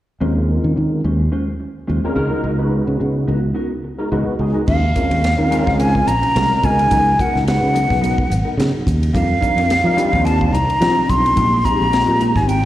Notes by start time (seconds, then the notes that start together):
0.20 D#2 G#3 C4 C#4 F4 A#4 C5
0.36 muted clean electric guitar stroke
0.48 muted clean electric guitar stroke
0.64 D#3
0.76 D#3, muted clean electric guitar stroke
1.04 D#2 G#3 C#4 F4 C5
1.20 muted clean electric guitar stroke
1.32 G#3 C#4 F4 C5
1.47 muted clean electric guitar stroke
1.60 muted clean electric guitar stroke
1.87 D#2 G#3 C#4 F4 C5
2.04 G#3 C4 C#4 F4 A#4, muted clean electric guitar stroke, muted fingered electric bass stroke
2.15 C#2 G#3 B3 D#4 F#4 A#4, muted clean electric guitar stroke
2.31 D#4 F#4 A#4
2.43 C#2 B3 D#4 F#4 A#4
2.58 G#3 B3 D#4 F#4 B4, muted clean electric guitar stroke
2.71 muted clean electric guitar stroke
2.87 C#3
3.00 C#3, muted clean electric guitar stroke
3.27 C#2 B3 D#4 F#4 A#4
3.43 muted clean electric guitar stroke
3.54 B3 D#4 F#4 A#4
3.70 muted clean electric guitar stroke
3.84 muted clean electric guitar stroke
3.98 G#3 B3 D#4 F#4 A#4
4.11 C#2 G#3 B3 D#4 F#4 A#4 B4
4.27 muted fingered electric bass stroke, muted clean electric guitar stroke
4.39 C#2 G#3 B3 D#4 F#4 G#4, muted clean electric guitar stroke
4.54 D#4 F#4 A#4
4.67 D#2 G#3 C#4 F4 C5 F5, kick, crash
4.82 muted clean electric guitar stroke
4.95 G#3 C4 C#4 F4 A#4, muted clean electric guitar stroke, kick, hi-hat pedal, ride
5.10 D#2 C#4 F4 C5, ride
5.23 muted clean electric guitar stroke, snare, hi-hat pedal, ride
5.37 D#3 G#3 C4 C#4 F4 A#4
5.50 G#3 C4 C#4 F4 A#4 C5, hi-hat pedal, ride
5.67 C#2, muted clean electric guitar stroke, kick, snare
5.79 G#3 C#4 F4 C5 G#5, hi-hat pedal, ride
5.95 muted clean electric guitar stroke, kick
6.07 A#1 A#5, muted clean electric guitar stroke, hi-hat pedal, ride
6.22 C#4 F4 C5, ride
6.34 C2 G#3 C4 C#4 F4 A#4 C5, snare, hi-hat pedal, ride
6.49 muted clean electric guitar stroke
6.63 C#2 G#3 B3 D#4 F#4 A#4 G#5, muted clean electric guitar stroke, kick, hi-hat pedal, ride
6.79 ride
6.91 C#2 F#3 B3 D#4 A#4, kick, hi-hat pedal, ride
7.06 muted clean electric guitar stroke
7.19 G#3 B3 D#4 F#4 A#4 F#5, muted clean electric guitar stroke, kick, hi-hat pedal, ride
7.34 C#2 B3 D#4 A#4, snare
7.46 G#3 B3 D#4 F#4 B4 F#5, muted clean electric guitar stroke, snare, hi-hat pedal, ride
7.62 C#3
7.74 F#3 B3 D#4 A#4, hi-hat pedal, ride
7.90 B1, muted clean electric guitar stroke, kick, snare
8.01 F#3 B3 D#4 A#4, hi-hat pedal, ride
8.17 muted clean electric guitar stroke, kick
8.30 G#1, muted clean electric guitar stroke, hi-hat pedal, ride
8.45 B3 D#4 A#4
8.57 C#3 F#3 B3 D#4 A#4, snare, hi-hat pedal, ride
8.73 muted clean electric guitar stroke
8.86 D#2, muted clean electric guitar stroke, kick, hi-hat pedal, ride
9.03 ride
9.13 F2 G3 D4 D#4 A#4 F5, kick, hi-hat pedal, ride
9.29 muted clean electric guitar stroke
9.40 G3 C4 D4 D#4 A#4, muted clean electric guitar stroke, kick, hi-hat pedal, ride
9.56 F2 D4 D#4 A#4, ride
9.68 muted clean electric guitar stroke, snare, hi-hat pedal, ride
9.84 F3 G3 C4 D4 D#4 A#4
9.96 G3 C4 D4 D#4 F4 A#4, hi-hat pedal, ride
10.12 D#2, muted clean electric guitar stroke, kick
10.24 G3 D4 D#4 A#4 A5, hi-hat pedal, ride
10.39 muted clean electric guitar stroke, kick
10.52 C2 A#5, muted clean electric guitar stroke, hi-hat pedal, ride
10.67 D4 D#4 A#4, ride
10.80 F3 G3 C4 D4 D#4 F4 A#4, snare, hi-hat pedal, ride
10.96 muted clean electric guitar stroke
11.08 B1 C6, muted clean electric guitar stroke, kick, hi-hat pedal, ride
11.26 ride
11.35 A#1 G#3 C4 D#4 G4, kick, hi-hat pedal, ride
11.51 muted clean electric guitar stroke
11.64 G#3 C4 D#4 F4 G4 A#5, muted clean electric guitar stroke, kick, hi-hat pedal, ride
11.79 A#1 C4 D#4 G4
11.90 G#3 C4 D#4 F4 G4, muted clean electric guitar stroke, snare, hi-hat pedal, ride
12.08 A#2
12.19 G#3 C4 D#4 G4, hi-hat pedal, ride
12.35 G#1 G#5, muted clean electric guitar stroke, kick, snare
12.47 G#3 C4 D#4 G4 G5, hi-hat pedal, ride